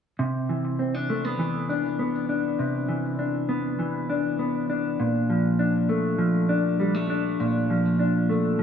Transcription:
0, 0, Header, 1, 2, 480
1, 0, Start_track
1, 0, Key_signature, 0, "major"
1, 0, Tempo, 600000
1, 158, Time_signature, 4, 2, 24, 8
1, 6903, End_track
2, 0, Start_track
2, 0, Title_t, "Clean electric guitar"
2, 0, Program_c, 0, 27
2, 153, Note_on_c, 0, 48, 66
2, 395, Note_on_c, 0, 52, 48
2, 634, Note_on_c, 0, 60, 45
2, 756, Note_off_c, 0, 60, 0
2, 756, Note_on_c, 0, 62, 52
2, 877, Note_on_c, 0, 57, 52
2, 997, Note_off_c, 0, 57, 0
2, 997, Note_on_c, 0, 59, 36
2, 1102, Note_off_c, 0, 52, 0
2, 1112, Note_on_c, 0, 52, 57
2, 1346, Note_off_c, 0, 62, 0
2, 1355, Note_on_c, 0, 62, 61
2, 1584, Note_off_c, 0, 59, 0
2, 1593, Note_on_c, 0, 59, 52
2, 1830, Note_off_c, 0, 62, 0
2, 1833, Note_on_c, 0, 62, 50
2, 2062, Note_off_c, 0, 48, 0
2, 2072, Note_on_c, 0, 48, 63
2, 2298, Note_off_c, 0, 52, 0
2, 2308, Note_on_c, 0, 52, 52
2, 2548, Note_off_c, 0, 62, 0
2, 2551, Note_on_c, 0, 62, 51
2, 2781, Note_off_c, 0, 59, 0
2, 2790, Note_on_c, 0, 59, 53
2, 3023, Note_off_c, 0, 52, 0
2, 3032, Note_on_c, 0, 52, 62
2, 3273, Note_off_c, 0, 62, 0
2, 3277, Note_on_c, 0, 62, 57
2, 3503, Note_off_c, 0, 59, 0
2, 3513, Note_on_c, 0, 59, 51
2, 3754, Note_off_c, 0, 62, 0
2, 3757, Note_on_c, 0, 62, 51
2, 3994, Note_off_c, 0, 48, 0
2, 3997, Note_on_c, 0, 46, 69
2, 4043, Note_off_c, 0, 52, 0
2, 4043, Note_off_c, 0, 59, 0
2, 4237, Note_on_c, 0, 53, 52
2, 4470, Note_off_c, 0, 62, 0
2, 4474, Note_on_c, 0, 62, 56
2, 4714, Note_on_c, 0, 57, 55
2, 4938, Note_off_c, 0, 53, 0
2, 4947, Note_on_c, 0, 53, 64
2, 5190, Note_off_c, 0, 62, 0
2, 5193, Note_on_c, 0, 62, 59
2, 5434, Note_off_c, 0, 57, 0
2, 5437, Note_on_c, 0, 55, 57
2, 5557, Note_off_c, 0, 55, 0
2, 5557, Note_on_c, 0, 57, 43
2, 5675, Note_off_c, 0, 62, 0
2, 5679, Note_on_c, 0, 62, 59
2, 5911, Note_off_c, 0, 46, 0
2, 5921, Note_on_c, 0, 46, 66
2, 6151, Note_off_c, 0, 53, 0
2, 6160, Note_on_c, 0, 53, 52
2, 6391, Note_off_c, 0, 62, 0
2, 6395, Note_on_c, 0, 62, 52
2, 6626, Note_off_c, 0, 57, 0
2, 6636, Note_on_c, 0, 57, 53
2, 6862, Note_off_c, 0, 53, 0
2, 6872, Note_on_c, 0, 53, 61
2, 6903, Note_off_c, 0, 46, 0
2, 6903, Note_off_c, 0, 53, 0
2, 6903, Note_off_c, 0, 57, 0
2, 6903, Note_off_c, 0, 62, 0
2, 6903, End_track
0, 0, End_of_file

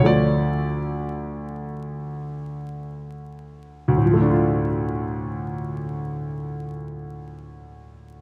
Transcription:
0, 0, Header, 1, 2, 480
1, 0, Start_track
1, 0, Key_signature, -1, "minor"
1, 0, Tempo, 500000
1, 7885, End_track
2, 0, Start_track
2, 0, Title_t, "Grand piano"
2, 0, Program_c, 0, 0
2, 0, Note_on_c, 0, 38, 47
2, 6, Note_on_c, 0, 50, 38
2, 21, Note_on_c, 0, 53, 41
2, 37, Note_on_c, 0, 57, 39
2, 59, Note_on_c, 0, 74, 70
2, 2753, Note_off_c, 0, 74, 0
2, 3670, Note_off_c, 0, 38, 0
2, 3679, Note_off_c, 0, 50, 0
2, 3686, Note_off_c, 0, 53, 0
2, 3694, Note_off_c, 0, 57, 0
2, 3725, Note_on_c, 0, 38, 53
2, 3809, Note_on_c, 0, 45, 43
2, 3890, Note_on_c, 0, 53, 44
2, 3970, Note_on_c, 0, 57, 45
2, 3979, Control_c, 0, 64, 127
2, 4048, Note_on_c, 0, 62, 47
2, 4126, Note_on_c, 0, 65, 42
2, 7885, Note_off_c, 0, 38, 0
2, 7885, Note_off_c, 0, 45, 0
2, 7885, Note_off_c, 0, 53, 0
2, 7885, Note_off_c, 0, 57, 0
2, 7885, Note_off_c, 0, 62, 0
2, 7885, Note_off_c, 0, 65, 0
2, 7885, End_track
0, 0, End_of_file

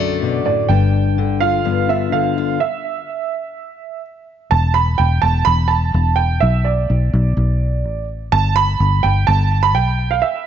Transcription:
0, 0, Header, 1, 4, 480
1, 0, Start_track
1, 0, Key_signature, 1, "minor"
1, 0, Tempo, 477327
1, 696, Time_signature, 4, 2, 24, 8
1, 10527, End_track
2, 0, Start_track
2, 0, Title_t, "Upright piano"
2, 0, Program_c, 0, 0
2, 0, Note_on_c, 0, 74, 86
2, 417, Note_off_c, 0, 74, 0
2, 459, Note_on_c, 0, 74, 72
2, 689, Note_on_c, 0, 79, 78
2, 705, Note_off_c, 0, 74, 0
2, 1373, Note_off_c, 0, 79, 0
2, 1413, Note_on_c, 0, 77, 95
2, 1902, Note_on_c, 0, 76, 65
2, 1909, Note_off_c, 0, 77, 0
2, 2123, Note_off_c, 0, 76, 0
2, 2136, Note_on_c, 0, 77, 78
2, 2617, Note_on_c, 0, 76, 66
2, 2630, Note_off_c, 0, 77, 0
2, 4016, Note_off_c, 0, 76, 0
2, 4532, Note_on_c, 0, 81, 86
2, 4767, Note_on_c, 0, 83, 88
2, 4781, Note_off_c, 0, 81, 0
2, 5006, Note_on_c, 0, 79, 81
2, 5018, Note_off_c, 0, 83, 0
2, 5245, Note_on_c, 0, 81, 85
2, 5258, Note_off_c, 0, 79, 0
2, 5478, Note_on_c, 0, 83, 102
2, 5498, Note_off_c, 0, 81, 0
2, 5709, Note_on_c, 0, 81, 79
2, 5734, Note_off_c, 0, 83, 0
2, 6191, Note_on_c, 0, 79, 85
2, 6216, Note_off_c, 0, 81, 0
2, 6440, Note_on_c, 0, 76, 79
2, 6450, Note_off_c, 0, 79, 0
2, 6683, Note_on_c, 0, 74, 67
2, 6695, Note_off_c, 0, 76, 0
2, 8087, Note_off_c, 0, 74, 0
2, 8369, Note_on_c, 0, 81, 97
2, 8594, Note_off_c, 0, 81, 0
2, 8605, Note_on_c, 0, 83, 107
2, 9080, Note_on_c, 0, 79, 92
2, 9103, Note_off_c, 0, 83, 0
2, 9321, Note_on_c, 0, 81, 93
2, 9333, Note_off_c, 0, 79, 0
2, 9681, Note_on_c, 0, 83, 90
2, 9697, Note_off_c, 0, 81, 0
2, 9801, Note_on_c, 0, 79, 93
2, 9810, Note_off_c, 0, 83, 0
2, 10163, Note_on_c, 0, 77, 81
2, 10177, Note_off_c, 0, 79, 0
2, 10275, Note_on_c, 0, 76, 76
2, 10291, Note_off_c, 0, 77, 0
2, 10527, Note_off_c, 0, 76, 0
2, 10527, End_track
3, 0, Start_track
3, 0, Title_t, "Steel-string acoustic guitar"
3, 0, Program_c, 1, 25
3, 0, Note_on_c, 1, 42, 50
3, 0, Note_on_c, 1, 50, 49
3, 0, Note_on_c, 1, 57, 47
3, 0, Note_on_c, 1, 62, 54
3, 0, Note_on_c, 1, 66, 58
3, 218, Note_on_c, 1, 47, 61
3, 446, Note_off_c, 1, 47, 0
3, 450, Note_on_c, 1, 45, 57
3, 669, Note_off_c, 1, 62, 0
3, 672, Note_off_c, 1, 42, 0
3, 676, Note_off_c, 1, 66, 0
3, 693, Note_off_c, 1, 45, 0
3, 698, Note_off_c, 1, 57, 0
3, 699, Note_on_c, 1, 43, 69
3, 704, Note_on_c, 1, 62, 55
3, 1175, Note_off_c, 1, 50, 0
3, 1187, Note_on_c, 1, 50, 55
3, 1426, Note_on_c, 1, 65, 58
3, 1643, Note_off_c, 1, 43, 0
3, 1655, Note_on_c, 1, 43, 48
3, 1660, Note_on_c, 1, 59, 44
3, 1900, Note_off_c, 1, 62, 0
3, 1910, Note_on_c, 1, 62, 53
3, 2128, Note_off_c, 1, 50, 0
3, 2140, Note_on_c, 1, 50, 58
3, 2381, Note_off_c, 1, 65, 0
3, 2391, Note_on_c, 1, 65, 58
3, 2587, Note_off_c, 1, 43, 0
3, 2589, Note_off_c, 1, 59, 0
3, 2594, Note_off_c, 1, 62, 0
3, 2595, Note_off_c, 1, 65, 0
3, 2618, Note_off_c, 1, 50, 0
3, 10527, End_track
4, 0, Start_track
4, 0, Title_t, "Fingered electric bass"
4, 0, Program_c, 2, 33
4, 0, Note_on_c, 2, 35, 63
4, 659, Note_off_c, 2, 35, 0
4, 695, Note_on_c, 2, 31, 71
4, 2578, Note_off_c, 2, 31, 0
4, 4541, Note_on_c, 2, 28, 89
4, 4993, Note_off_c, 2, 28, 0
4, 5021, Note_on_c, 2, 28, 74
4, 5246, Note_off_c, 2, 28, 0
4, 5259, Note_on_c, 2, 28, 84
4, 5485, Note_off_c, 2, 28, 0
4, 5499, Note_on_c, 2, 28, 90
4, 5952, Note_off_c, 2, 28, 0
4, 5974, Note_on_c, 2, 28, 93
4, 6429, Note_off_c, 2, 28, 0
4, 6460, Note_on_c, 2, 35, 91
4, 6912, Note_off_c, 2, 35, 0
4, 6936, Note_on_c, 2, 35, 78
4, 7162, Note_off_c, 2, 35, 0
4, 7175, Note_on_c, 2, 35, 81
4, 7402, Note_off_c, 2, 35, 0
4, 7409, Note_on_c, 2, 35, 84
4, 7892, Note_off_c, 2, 35, 0
4, 7892, Note_on_c, 2, 33, 94
4, 8347, Note_off_c, 2, 33, 0
4, 8371, Note_on_c, 2, 31, 90
4, 8826, Note_off_c, 2, 31, 0
4, 8849, Note_on_c, 2, 31, 82
4, 9078, Note_off_c, 2, 31, 0
4, 9091, Note_on_c, 2, 31, 81
4, 9319, Note_off_c, 2, 31, 0
4, 9333, Note_on_c, 2, 31, 95
4, 9813, Note_off_c, 2, 31, 0
4, 9813, Note_on_c, 2, 35, 98
4, 10267, Note_off_c, 2, 35, 0
4, 10527, End_track
0, 0, End_of_file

